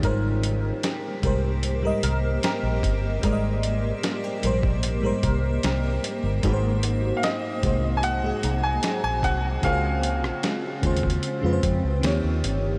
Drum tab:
HH |x-----x-----x-----x-----x-----x-----x-----x-----|x-----x-----x-----x-----x-----x-----x-----x-----|x-----x-----x-----x-----x-----x-----x-----x-----|x-----x-----x-----x-x-x-x-----x-----x-----x-----|
SD |------------o-----------------------o-----------|------------o-----------------------o-----------|------------o-----------------------o-----------|---------r--o-----------------------o-----------|
BD |o-----------------o-----------------------o-----|o--------------------o--------o-----------------|o-----------------o-----------------------o-----|o-----------------o--o--------o-----------------|